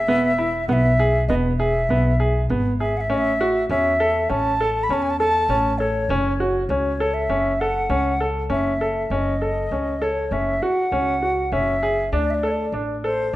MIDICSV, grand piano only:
0, 0, Header, 1, 2, 480
1, 0, Start_track
1, 0, Key_signature, 3, "minor"
1, 0, Tempo, 602410
1, 70, Time_signature, 5, 2, 24, 8
1, 10644, End_track
2, 0, Start_track
2, 0, Title_t, "Grand piano"
2, 0, Program_c, 0, 0
2, 66, Note_on_c, 0, 59, 77
2, 231, Note_off_c, 0, 59, 0
2, 306, Note_on_c, 0, 64, 68
2, 471, Note_off_c, 0, 64, 0
2, 549, Note_on_c, 0, 59, 70
2, 712, Note_off_c, 0, 59, 0
2, 793, Note_on_c, 0, 68, 72
2, 955, Note_off_c, 0, 68, 0
2, 1033, Note_on_c, 0, 59, 70
2, 1194, Note_off_c, 0, 59, 0
2, 1272, Note_on_c, 0, 68, 70
2, 1434, Note_off_c, 0, 68, 0
2, 1516, Note_on_c, 0, 59, 66
2, 1676, Note_off_c, 0, 59, 0
2, 1751, Note_on_c, 0, 68, 66
2, 1913, Note_off_c, 0, 68, 0
2, 1994, Note_on_c, 0, 59, 62
2, 2155, Note_off_c, 0, 59, 0
2, 2234, Note_on_c, 0, 68, 66
2, 2395, Note_off_c, 0, 68, 0
2, 2467, Note_on_c, 0, 61, 78
2, 2630, Note_off_c, 0, 61, 0
2, 2714, Note_on_c, 0, 66, 75
2, 2874, Note_off_c, 0, 66, 0
2, 2953, Note_on_c, 0, 61, 66
2, 3113, Note_off_c, 0, 61, 0
2, 3188, Note_on_c, 0, 69, 72
2, 3350, Note_off_c, 0, 69, 0
2, 3423, Note_on_c, 0, 61, 65
2, 3586, Note_off_c, 0, 61, 0
2, 3670, Note_on_c, 0, 69, 68
2, 3831, Note_off_c, 0, 69, 0
2, 3907, Note_on_c, 0, 61, 72
2, 4069, Note_off_c, 0, 61, 0
2, 4143, Note_on_c, 0, 69, 64
2, 4306, Note_off_c, 0, 69, 0
2, 4380, Note_on_c, 0, 61, 67
2, 4544, Note_off_c, 0, 61, 0
2, 4622, Note_on_c, 0, 69, 61
2, 4785, Note_off_c, 0, 69, 0
2, 4862, Note_on_c, 0, 61, 80
2, 5025, Note_off_c, 0, 61, 0
2, 5101, Note_on_c, 0, 66, 70
2, 5264, Note_off_c, 0, 66, 0
2, 5340, Note_on_c, 0, 61, 61
2, 5504, Note_off_c, 0, 61, 0
2, 5580, Note_on_c, 0, 69, 73
2, 5744, Note_off_c, 0, 69, 0
2, 5814, Note_on_c, 0, 61, 67
2, 5980, Note_off_c, 0, 61, 0
2, 6065, Note_on_c, 0, 69, 67
2, 6227, Note_off_c, 0, 69, 0
2, 6293, Note_on_c, 0, 61, 69
2, 6459, Note_off_c, 0, 61, 0
2, 6537, Note_on_c, 0, 69, 62
2, 6702, Note_off_c, 0, 69, 0
2, 6770, Note_on_c, 0, 61, 69
2, 6937, Note_off_c, 0, 61, 0
2, 7020, Note_on_c, 0, 69, 63
2, 7184, Note_off_c, 0, 69, 0
2, 7262, Note_on_c, 0, 61, 70
2, 7425, Note_off_c, 0, 61, 0
2, 7502, Note_on_c, 0, 69, 62
2, 7666, Note_off_c, 0, 69, 0
2, 7744, Note_on_c, 0, 61, 57
2, 7907, Note_off_c, 0, 61, 0
2, 7981, Note_on_c, 0, 69, 67
2, 8145, Note_off_c, 0, 69, 0
2, 8222, Note_on_c, 0, 61, 59
2, 8386, Note_off_c, 0, 61, 0
2, 8466, Note_on_c, 0, 66, 67
2, 8629, Note_off_c, 0, 66, 0
2, 8703, Note_on_c, 0, 61, 64
2, 8867, Note_off_c, 0, 61, 0
2, 8943, Note_on_c, 0, 66, 54
2, 9107, Note_off_c, 0, 66, 0
2, 9183, Note_on_c, 0, 61, 66
2, 9347, Note_off_c, 0, 61, 0
2, 9424, Note_on_c, 0, 68, 66
2, 9588, Note_off_c, 0, 68, 0
2, 9663, Note_on_c, 0, 62, 76
2, 9828, Note_off_c, 0, 62, 0
2, 9906, Note_on_c, 0, 69, 68
2, 10070, Note_off_c, 0, 69, 0
2, 10147, Note_on_c, 0, 62, 61
2, 10311, Note_off_c, 0, 62, 0
2, 10391, Note_on_c, 0, 69, 65
2, 10554, Note_off_c, 0, 69, 0
2, 10644, End_track
0, 0, End_of_file